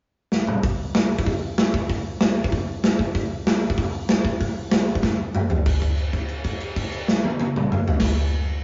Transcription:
0.32 snare medium
0.47 mid tom medium
0.63 kick loud
0.63 open hi-hat medium
0.95 snare loud
0.95 open hi-hat medium
1.19 kick medium
1.26 kick loud
1.26 open hi-hat medium
1.58 snare loud
1.58 open hi-hat medium
1.74 kick loud
1.90 kick medium
1.90 open hi-hat medium
2.21 snare loud
2.21 open hi-hat medium
2.44 kick loud
2.52 kick loud
2.52 open hi-hat medium
2.84 snare loud
2.84 open hi-hat medium
2.99 kick medium
3.15 kick loud
3.15 open hi-hat medium
3.47 snare loud
3.47 open hi-hat medium
3.70 kick medium
3.78 kick loud
3.78 open hi-hat medium
4.09 snare loud
4.09 open hi-hat medium
4.25 kick medium
4.41 kick medium
4.41 open hi-hat medium
4.71 snare loud
4.71 open hi-hat medium
4.95 kick medium
5.03 kick loud
5.03 snare medium
5.35 mid tom loud
5.50 floor tom loud
5.66 kick loud
5.66 crash medium
5.81 kick medium
5.81 crash soft
5.97 crash soft
6.13 kick medium
6.13 crash soft
6.28 crash soft
6.44 kick medium
6.44 crash medium
6.60 crash medium
6.76 kick medium
6.76 crash medium
6.92 crash medium
7.08 snare medium
7.24 high tom loud
7.40 high tom loud
7.56 mid tom loud
7.72 mid tom loud
7.88 floor tom loud
8.00 kick loud
8.00 snare medium
8.00 crash loud

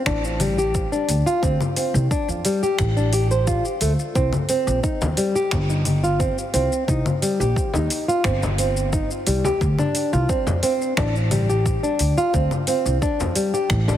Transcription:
0.06 0.84 A1 loud
0.06 0.23 D4 medium
0.06 finger snap medium
0.06 kick loud
0.06 shaker soft
0.24 shaker soft
0.40 0.57 G3 medium
0.40 open hi-hat medium
0.40 low conga medium
0.40 shaker medium
0.58 0.91 G4 medium
0.58 shaker soft
0.75 kick loud
0.75 shaker soft
0.92 1.25 D4 medium
0.92 shaker soft
1.08 1.21 D2 medium
1.08 open hi-hat medium
1.08 shaker medium
1.26 1.42 F4 medium
1.26 shaker soft
1.42 1.55 D2 loud
1.42 1.60 C4 medium
1.42 kick loud
1.42 shaker soft
1.61 low conga medium
1.61 shaker soft
1.76 2.09 C4 medium
1.76 open hi-hat medium
1.76 shaker medium
1.94 2.06 C2 loud
1.94 shaker soft
2.11 2.28 D4 medium
2.11 kick loud
2.11 shaker soft
2.28 2.40 F2 medium
2.28 shaker soft
2.45 2.61 G3 medium
2.45 open hi-hat medium
2.45 shaker medium
2.63 2.95 G4 medium
2.63 shaker soft
2.79 3.56 A1 loud
2.79 finger snap medium
2.79 kick loud
2.79 shaker soft
2.97 3.12 D4 medium
2.97 shaker soft
3.13 3.30 G4 medium
3.13 open hi-hat medium
3.13 shaker medium
3.31 3.46 C5 medium
3.31 shaker soft
3.47 3.64 F4 medium
3.47 kick loud
3.47 shaker soft
3.65 shaker soft
3.81 3.93 D2 medium
3.81 3.92 A3 medium
3.81 open hi-hat medium
3.81 shaker medium
3.99 shaker soft
4.15 4.28 C2 loud
4.15 4.32 C4 medium
4.15 kick loud
4.15 shaker soft
4.33 low conga medium
4.33 shaker soft
4.49 4.82 C4 medium
4.49 open hi-hat medium
4.49 shaker medium
4.67 4.78 A#1 medium
4.67 shaker soft
4.83 5.00 D#4 medium
4.83 kick loud
4.83 shaker soft
5.01 5.13 D#2 medium
5.01 frame drum medium
5.01 shaker soft
5.17 5.34 G3 medium
5.17 open hi-hat medium
5.17 shaker medium
5.35 5.68 G4 medium
5.35 shaker soft
5.51 6.29 G1 loud
5.51 finger snap medium
5.51 kick loud
5.51 frame drum medium
5.51 shaker soft
5.70 6.02 D#4 medium
5.70 shaker soft
5.85 open hi-hat medium
5.85 low conga medium
5.85 shaker medium
6.04 6.19 F4 medium
6.04 shaker soft
6.20 6.37 C4 medium
6.20 kick loud
6.20 shaker soft
6.38 shaker soft
6.54 6.66 C2 medium
6.54 6.86 C4 medium
6.54 open hi-hat medium
6.54 shaker medium
6.72 shaker soft
6.88 7.00 C2 loud
6.88 7.05 D#4 medium
6.88 kick loud
6.88 shaker soft
7.06 low conga medium
7.06 shaker soft
7.22 7.38 G3 medium
7.22 open hi-hat medium
7.22 shaker medium
7.40 7.51 A#1 medium
7.40 7.72 G4 medium
7.40 shaker soft
7.56 kick loud
7.56 shaker soft
7.74 7.86 D#2 medium
7.74 8.07 D#4 medium
7.74 frame drum medium
7.74 shaker soft
7.90 open hi-hat medium
7.90 shaker medium
8.08 8.24 F4 medium
8.08 shaker soft
8.24 9.02 G1 loud
8.24 8.41 C4 medium
8.24 finger snap medium
8.24 kick loud
8.24 shaker soft
8.43 frame drum medium
8.43 shaker soft
8.58 8.91 C4 medium
8.58 open hi-hat medium
8.58 shaker medium
8.77 shaker soft
8.93 9.10 D#4 medium
8.93 kick loud
8.93 shaker soft
9.11 shaker soft
9.27 9.39 C2 medium
9.27 9.43 G3 medium
9.27 open hi-hat medium
9.27 shaker medium
9.44 9.61 G4 medium
9.44 frame drum medium
9.44 shaker soft
9.61 9.73 D2 loud
9.61 kick loud
9.61 shaker soft
9.79 10.11 D4 medium
9.79 low conga medium
9.79 shaker soft
9.95 open hi-hat loud
9.95 shaker medium
10.13 10.24 C2 loud
10.13 10.28 F4 medium
10.13 shaker soft
10.29 10.46 C4 medium
10.29 kick loud
10.29 shaker soft
10.47 10.58 F2 medium
10.47 frame drum medium
10.47 shaker soft
10.63 10.96 C4 medium
10.63 open hi-hat medium
10.63 shaker medium
10.82 shaker soft
10.97 11.75 A1 loud
10.97 11.14 D4 medium
10.97 finger snap medium
10.97 kick loud
10.97 frame drum loud
10.97 shaker soft
11.16 shaker soft
11.31 11.47 G3 medium
11.31 open hi-hat medium
11.31 low conga medium
11.31 shaker medium
11.49 11.82 G4 medium
11.49 shaker soft
11.66 kick loud
11.66 shaker soft
11.83 12.16 D4 medium
11.83 shaker soft
11.99 12.12 D2 medium
11.99 open hi-hat medium
11.99 shaker medium
12.18 12.33 F4 medium
12.18 shaker soft
12.34 12.46 D2 loud
12.34 12.51 C4 medium
12.34 kick loud
12.34 shaker soft
12.51 low conga medium
12.51 shaker soft
12.67 13.00 C4 medium
12.67 open hi-hat medium
12.67 shaker medium
12.86 12.97 C2 medium
12.86 shaker soft
13.02 13.19 D4 medium
13.02 kick loud
13.02 shaker soft
13.20 13.31 F2 medium
13.20 frame drum medium
13.20 shaker soft
13.36 13.52 G3 medium
13.36 open hi-hat medium
13.36 shaker medium
13.54 13.86 G4 medium
13.54 shaker soft
13.70 13.97 A1 loud
13.70 finger snap medium
13.70 kick loud
13.70 shaker soft
13.88 13.97 D4 medium
13.88 frame drum loud
13.88 shaker soft

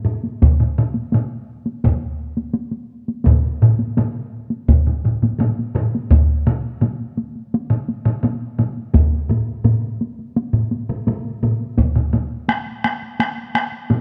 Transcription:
0.06 taiko mid medium
0.24 taiko high soft
0.42 taiko medium
0.42 taiko low-mid medium
0.42 taiko high medium
0.60 taiko low-mid medium
0.78 taiko low-mid medium
0.94 taiko high soft
1.12 taiko low-mid medium
1.12 taiko high medium
1.66 taiko high soft
1.84 taiko medium
1.84 taiko low-mid medium
1.84 taiko high medium
2.37 taiko high soft
2.54 taiko high medium
2.71 taiko high soft
3.08 taiko high soft
3.24 taiko medium
3.24 taiko low-mid medium
3.24 taiko mid medium
3.24 taiko high medium
3.62 taiko low-mid medium
3.62 taiko mid medium
3.79 taiko high soft
3.97 taiko low-mid medium
3.97 taiko mid medium
3.97 taiko high medium
4.50 taiko high soft
4.68 taiko medium
4.68 taiko low-mid medium
4.68 taiko mid medium
4.68 taiko high medium
4.87 taiko low-mid medium
4.87 taiko mid medium
5.04 taiko low-mid medium
5.04 taiko mid medium
5.22 taiko low-mid medium
5.22 taiko mid medium
5.22 taiko high medium
5.39 taiko low-mid medium
5.39 taiko mid medium
5.39 taiko high medium
5.59 taiko high soft
5.75 taiko low-mid medium
5.75 taiko mid loud
5.95 taiko high medium
6.11 taiko loud
6.11 taiko low-mid medium
6.11 taiko high medium
6.29 taiko high soft
6.47 taiko low-mid loud
6.47 taiko high soft
6.81 taiko low-mid medium
6.81 taiko high medium
7.00 taiko high soft
7.17 taiko high medium
7.36 taiko high soft
7.54 taiko high medium
7.70 taiko low-mid medium
7.70 taiko high soft
7.88 taiko high medium
8.05 taiko low-mid medium
8.05 taiko high soft
8.23 taiko low-mid medium
8.23 taiko high medium
8.42 taiko high soft
8.59 taiko low-mid medium
8.59 taiko high medium
8.77 taiko high soft
8.94 taiko medium
8.94 taiko mid medium
8.94 taiko high medium
9.13 taiko high soft
9.29 taiko mid loud
9.29 taiko high soft
9.64 taiko mid loud
9.64 taiko high medium
9.84 taiko high soft
10.01 taiko high medium
10.19 taiko high soft
10.36 taiko high medium
10.53 taiko mid medium
10.53 taiko high soft
10.71 taiko high soft
10.89 taiko mid loud
10.89 taiko high soft
11.07 taiko mid loud
11.07 taiko high medium
11.25 taiko high soft
11.43 taiko mid loud
11.43 taiko high soft
11.61 taiko high soft
11.78 taiko medium
11.78 taiko low-mid medium
11.78 taiko high medium
11.96 taiko low-mid medium
11.96 taiko high soft
12.13 taiko low-mid medium
12.13 taiko high medium
12.48 taiko rim medium
12.48 taiko high medium
12.66 taiko high soft
12.84 taiko rim medium
12.84 taiko high medium
13.02 taiko high soft
13.20 taiko rim medium
13.20 taiko high medium
13.38 taiko high soft
13.55 taiko rim medium
13.55 taiko high soft
13.72 taiko high soft
13.90 taiko low-mid loud
13.90 taiko high medium

